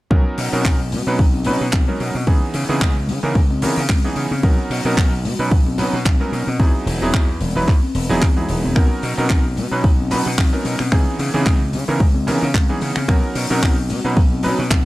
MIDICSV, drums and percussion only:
0, 0, Header, 1, 2, 480
1, 0, Start_track
1, 0, Key_signature, 5, "major"
1, 0, Tempo, 540541
1, 99, Time_signature, 4, 2, 24, 8
1, 13187, End_track
2, 0, Start_track
2, 0, Title_t, "Drums"
2, 96, Note_on_c, 9, 36, 103
2, 184, Note_off_c, 9, 36, 0
2, 335, Note_on_c, 9, 46, 107
2, 424, Note_off_c, 9, 46, 0
2, 474, Note_on_c, 9, 63, 74
2, 563, Note_off_c, 9, 63, 0
2, 577, Note_on_c, 9, 36, 105
2, 581, Note_on_c, 9, 39, 101
2, 666, Note_off_c, 9, 36, 0
2, 670, Note_off_c, 9, 39, 0
2, 818, Note_on_c, 9, 46, 82
2, 818, Note_on_c, 9, 63, 63
2, 820, Note_on_c, 9, 64, 70
2, 907, Note_off_c, 9, 46, 0
2, 907, Note_off_c, 9, 63, 0
2, 909, Note_off_c, 9, 64, 0
2, 1057, Note_on_c, 9, 36, 108
2, 1146, Note_off_c, 9, 36, 0
2, 1185, Note_on_c, 9, 63, 84
2, 1274, Note_off_c, 9, 63, 0
2, 1283, Note_on_c, 9, 46, 90
2, 1372, Note_off_c, 9, 46, 0
2, 1534, Note_on_c, 9, 39, 111
2, 1537, Note_on_c, 9, 36, 111
2, 1539, Note_on_c, 9, 63, 59
2, 1623, Note_off_c, 9, 39, 0
2, 1626, Note_off_c, 9, 36, 0
2, 1628, Note_off_c, 9, 63, 0
2, 1665, Note_on_c, 9, 64, 71
2, 1754, Note_off_c, 9, 64, 0
2, 1777, Note_on_c, 9, 46, 86
2, 1865, Note_off_c, 9, 46, 0
2, 1905, Note_on_c, 9, 63, 84
2, 1994, Note_off_c, 9, 63, 0
2, 2017, Note_on_c, 9, 36, 109
2, 2106, Note_off_c, 9, 36, 0
2, 2254, Note_on_c, 9, 46, 99
2, 2342, Note_off_c, 9, 46, 0
2, 2390, Note_on_c, 9, 63, 79
2, 2479, Note_off_c, 9, 63, 0
2, 2497, Note_on_c, 9, 36, 115
2, 2502, Note_on_c, 9, 39, 116
2, 2586, Note_off_c, 9, 36, 0
2, 2591, Note_off_c, 9, 39, 0
2, 2730, Note_on_c, 9, 64, 77
2, 2742, Note_on_c, 9, 46, 84
2, 2819, Note_off_c, 9, 64, 0
2, 2831, Note_off_c, 9, 46, 0
2, 2977, Note_on_c, 9, 36, 116
2, 3066, Note_off_c, 9, 36, 0
2, 3112, Note_on_c, 9, 63, 97
2, 3201, Note_off_c, 9, 63, 0
2, 3215, Note_on_c, 9, 46, 108
2, 3303, Note_off_c, 9, 46, 0
2, 3457, Note_on_c, 9, 36, 111
2, 3458, Note_on_c, 9, 39, 127
2, 3464, Note_on_c, 9, 63, 63
2, 3546, Note_off_c, 9, 36, 0
2, 3547, Note_off_c, 9, 39, 0
2, 3553, Note_off_c, 9, 63, 0
2, 3587, Note_on_c, 9, 64, 70
2, 3676, Note_off_c, 9, 64, 0
2, 3692, Note_on_c, 9, 46, 84
2, 3781, Note_off_c, 9, 46, 0
2, 3834, Note_on_c, 9, 63, 92
2, 3923, Note_off_c, 9, 63, 0
2, 3937, Note_on_c, 9, 36, 108
2, 4026, Note_off_c, 9, 36, 0
2, 4181, Note_on_c, 9, 46, 110
2, 4270, Note_off_c, 9, 46, 0
2, 4315, Note_on_c, 9, 63, 85
2, 4404, Note_off_c, 9, 63, 0
2, 4417, Note_on_c, 9, 36, 115
2, 4422, Note_on_c, 9, 39, 94
2, 4506, Note_off_c, 9, 36, 0
2, 4511, Note_off_c, 9, 39, 0
2, 4658, Note_on_c, 9, 64, 76
2, 4664, Note_on_c, 9, 46, 87
2, 4747, Note_off_c, 9, 64, 0
2, 4753, Note_off_c, 9, 46, 0
2, 4897, Note_on_c, 9, 36, 118
2, 4986, Note_off_c, 9, 36, 0
2, 5030, Note_on_c, 9, 63, 102
2, 5119, Note_off_c, 9, 63, 0
2, 5134, Note_on_c, 9, 46, 100
2, 5222, Note_off_c, 9, 46, 0
2, 5377, Note_on_c, 9, 36, 115
2, 5378, Note_on_c, 9, 63, 61
2, 5382, Note_on_c, 9, 39, 107
2, 5465, Note_off_c, 9, 36, 0
2, 5467, Note_off_c, 9, 63, 0
2, 5471, Note_off_c, 9, 39, 0
2, 5504, Note_on_c, 9, 64, 76
2, 5592, Note_off_c, 9, 64, 0
2, 5622, Note_on_c, 9, 46, 86
2, 5711, Note_off_c, 9, 46, 0
2, 5742, Note_on_c, 9, 63, 84
2, 5831, Note_off_c, 9, 63, 0
2, 5857, Note_on_c, 9, 36, 108
2, 5946, Note_off_c, 9, 36, 0
2, 6103, Note_on_c, 9, 46, 100
2, 6191, Note_off_c, 9, 46, 0
2, 6232, Note_on_c, 9, 63, 85
2, 6321, Note_off_c, 9, 63, 0
2, 6338, Note_on_c, 9, 36, 119
2, 6343, Note_on_c, 9, 39, 101
2, 6427, Note_off_c, 9, 36, 0
2, 6432, Note_off_c, 9, 39, 0
2, 6575, Note_on_c, 9, 64, 65
2, 6576, Note_on_c, 9, 46, 96
2, 6578, Note_on_c, 9, 63, 63
2, 6664, Note_off_c, 9, 64, 0
2, 6665, Note_off_c, 9, 46, 0
2, 6667, Note_off_c, 9, 63, 0
2, 6819, Note_on_c, 9, 36, 115
2, 6824, Note_on_c, 9, 39, 33
2, 6908, Note_off_c, 9, 36, 0
2, 6913, Note_off_c, 9, 39, 0
2, 6952, Note_on_c, 9, 63, 90
2, 7041, Note_off_c, 9, 63, 0
2, 7059, Note_on_c, 9, 46, 94
2, 7148, Note_off_c, 9, 46, 0
2, 7288, Note_on_c, 9, 63, 62
2, 7299, Note_on_c, 9, 36, 112
2, 7302, Note_on_c, 9, 39, 98
2, 7377, Note_off_c, 9, 63, 0
2, 7388, Note_off_c, 9, 36, 0
2, 7390, Note_off_c, 9, 39, 0
2, 7430, Note_on_c, 9, 64, 73
2, 7519, Note_off_c, 9, 64, 0
2, 7535, Note_on_c, 9, 46, 87
2, 7624, Note_off_c, 9, 46, 0
2, 7661, Note_on_c, 9, 63, 92
2, 7750, Note_off_c, 9, 63, 0
2, 7779, Note_on_c, 9, 26, 64
2, 7779, Note_on_c, 9, 36, 103
2, 7785, Note_on_c, 9, 82, 31
2, 7868, Note_off_c, 9, 26, 0
2, 7868, Note_off_c, 9, 36, 0
2, 7874, Note_off_c, 9, 82, 0
2, 8012, Note_on_c, 9, 82, 77
2, 8019, Note_on_c, 9, 46, 97
2, 8101, Note_off_c, 9, 82, 0
2, 8108, Note_off_c, 9, 46, 0
2, 8148, Note_on_c, 9, 82, 43
2, 8150, Note_on_c, 9, 63, 76
2, 8237, Note_off_c, 9, 82, 0
2, 8239, Note_off_c, 9, 63, 0
2, 8253, Note_on_c, 9, 82, 32
2, 8256, Note_on_c, 9, 39, 100
2, 8259, Note_on_c, 9, 36, 112
2, 8341, Note_off_c, 9, 82, 0
2, 8344, Note_off_c, 9, 39, 0
2, 8348, Note_off_c, 9, 36, 0
2, 8494, Note_on_c, 9, 63, 61
2, 8494, Note_on_c, 9, 82, 76
2, 8497, Note_on_c, 9, 64, 71
2, 8501, Note_on_c, 9, 46, 88
2, 8583, Note_off_c, 9, 63, 0
2, 8583, Note_off_c, 9, 82, 0
2, 8586, Note_off_c, 9, 64, 0
2, 8590, Note_off_c, 9, 46, 0
2, 8636, Note_on_c, 9, 82, 45
2, 8724, Note_off_c, 9, 82, 0
2, 8738, Note_on_c, 9, 36, 116
2, 8738, Note_on_c, 9, 82, 34
2, 8827, Note_off_c, 9, 36, 0
2, 8827, Note_off_c, 9, 82, 0
2, 8880, Note_on_c, 9, 63, 90
2, 8969, Note_off_c, 9, 63, 0
2, 8976, Note_on_c, 9, 82, 88
2, 8979, Note_on_c, 9, 46, 110
2, 9065, Note_off_c, 9, 82, 0
2, 9067, Note_off_c, 9, 46, 0
2, 9113, Note_on_c, 9, 82, 46
2, 9202, Note_off_c, 9, 82, 0
2, 9218, Note_on_c, 9, 36, 108
2, 9223, Note_on_c, 9, 39, 94
2, 9226, Note_on_c, 9, 82, 37
2, 9234, Note_on_c, 9, 63, 64
2, 9307, Note_off_c, 9, 36, 0
2, 9312, Note_off_c, 9, 39, 0
2, 9315, Note_off_c, 9, 82, 0
2, 9323, Note_off_c, 9, 63, 0
2, 9357, Note_on_c, 9, 64, 72
2, 9445, Note_off_c, 9, 64, 0
2, 9456, Note_on_c, 9, 46, 88
2, 9462, Note_on_c, 9, 82, 77
2, 9545, Note_off_c, 9, 46, 0
2, 9551, Note_off_c, 9, 82, 0
2, 9582, Note_on_c, 9, 26, 52
2, 9593, Note_on_c, 9, 82, 45
2, 9595, Note_on_c, 9, 63, 92
2, 9670, Note_off_c, 9, 26, 0
2, 9682, Note_off_c, 9, 82, 0
2, 9684, Note_off_c, 9, 63, 0
2, 9697, Note_on_c, 9, 26, 73
2, 9698, Note_on_c, 9, 36, 99
2, 9706, Note_on_c, 9, 82, 34
2, 9785, Note_off_c, 9, 26, 0
2, 9787, Note_off_c, 9, 36, 0
2, 9795, Note_off_c, 9, 82, 0
2, 9937, Note_on_c, 9, 82, 76
2, 9941, Note_on_c, 9, 46, 91
2, 10026, Note_off_c, 9, 82, 0
2, 10030, Note_off_c, 9, 46, 0
2, 10076, Note_on_c, 9, 82, 46
2, 10079, Note_on_c, 9, 63, 86
2, 10165, Note_off_c, 9, 82, 0
2, 10168, Note_off_c, 9, 63, 0
2, 10179, Note_on_c, 9, 36, 107
2, 10181, Note_on_c, 9, 39, 90
2, 10268, Note_off_c, 9, 36, 0
2, 10269, Note_off_c, 9, 39, 0
2, 10418, Note_on_c, 9, 46, 88
2, 10418, Note_on_c, 9, 82, 87
2, 10428, Note_on_c, 9, 64, 62
2, 10506, Note_off_c, 9, 82, 0
2, 10507, Note_off_c, 9, 46, 0
2, 10517, Note_off_c, 9, 64, 0
2, 10553, Note_on_c, 9, 82, 46
2, 10642, Note_off_c, 9, 82, 0
2, 10655, Note_on_c, 9, 82, 37
2, 10658, Note_on_c, 9, 36, 111
2, 10744, Note_off_c, 9, 82, 0
2, 10747, Note_off_c, 9, 36, 0
2, 10783, Note_on_c, 9, 63, 92
2, 10872, Note_off_c, 9, 63, 0
2, 10901, Note_on_c, 9, 46, 101
2, 10904, Note_on_c, 9, 82, 87
2, 10989, Note_off_c, 9, 46, 0
2, 10993, Note_off_c, 9, 82, 0
2, 11035, Note_on_c, 9, 82, 47
2, 11124, Note_off_c, 9, 82, 0
2, 11136, Note_on_c, 9, 63, 58
2, 11138, Note_on_c, 9, 36, 105
2, 11141, Note_on_c, 9, 82, 32
2, 11144, Note_on_c, 9, 39, 112
2, 11224, Note_off_c, 9, 63, 0
2, 11227, Note_off_c, 9, 36, 0
2, 11230, Note_off_c, 9, 82, 0
2, 11233, Note_off_c, 9, 39, 0
2, 11272, Note_on_c, 9, 64, 64
2, 11361, Note_off_c, 9, 64, 0
2, 11375, Note_on_c, 9, 82, 88
2, 11382, Note_on_c, 9, 46, 87
2, 11464, Note_off_c, 9, 82, 0
2, 11471, Note_off_c, 9, 46, 0
2, 11506, Note_on_c, 9, 26, 57
2, 11515, Note_on_c, 9, 82, 50
2, 11518, Note_on_c, 9, 63, 87
2, 11595, Note_off_c, 9, 26, 0
2, 11604, Note_off_c, 9, 82, 0
2, 11607, Note_off_c, 9, 63, 0
2, 11619, Note_on_c, 9, 36, 98
2, 11622, Note_on_c, 9, 26, 83
2, 11624, Note_on_c, 9, 82, 38
2, 11708, Note_off_c, 9, 36, 0
2, 11711, Note_off_c, 9, 26, 0
2, 11713, Note_off_c, 9, 82, 0
2, 11855, Note_on_c, 9, 82, 81
2, 11858, Note_on_c, 9, 46, 102
2, 11944, Note_off_c, 9, 82, 0
2, 11947, Note_off_c, 9, 46, 0
2, 11994, Note_on_c, 9, 82, 47
2, 11995, Note_on_c, 9, 63, 81
2, 12083, Note_off_c, 9, 82, 0
2, 12084, Note_off_c, 9, 63, 0
2, 12097, Note_on_c, 9, 82, 37
2, 12100, Note_on_c, 9, 36, 107
2, 12106, Note_on_c, 9, 39, 97
2, 12186, Note_off_c, 9, 82, 0
2, 12189, Note_off_c, 9, 36, 0
2, 12195, Note_off_c, 9, 39, 0
2, 12335, Note_on_c, 9, 64, 74
2, 12337, Note_on_c, 9, 82, 92
2, 12339, Note_on_c, 9, 63, 60
2, 12343, Note_on_c, 9, 46, 84
2, 12424, Note_off_c, 9, 64, 0
2, 12426, Note_off_c, 9, 82, 0
2, 12427, Note_off_c, 9, 63, 0
2, 12431, Note_off_c, 9, 46, 0
2, 12473, Note_on_c, 9, 82, 45
2, 12562, Note_off_c, 9, 82, 0
2, 12579, Note_on_c, 9, 82, 34
2, 12580, Note_on_c, 9, 36, 111
2, 12668, Note_off_c, 9, 82, 0
2, 12669, Note_off_c, 9, 36, 0
2, 12720, Note_on_c, 9, 63, 81
2, 12809, Note_off_c, 9, 63, 0
2, 12813, Note_on_c, 9, 46, 98
2, 12826, Note_on_c, 9, 82, 81
2, 12902, Note_off_c, 9, 46, 0
2, 12915, Note_off_c, 9, 82, 0
2, 12958, Note_on_c, 9, 82, 56
2, 13047, Note_off_c, 9, 82, 0
2, 13058, Note_on_c, 9, 63, 60
2, 13060, Note_on_c, 9, 36, 104
2, 13061, Note_on_c, 9, 82, 35
2, 13064, Note_on_c, 9, 39, 115
2, 13146, Note_off_c, 9, 63, 0
2, 13148, Note_off_c, 9, 36, 0
2, 13150, Note_off_c, 9, 82, 0
2, 13153, Note_off_c, 9, 39, 0
2, 13187, End_track
0, 0, End_of_file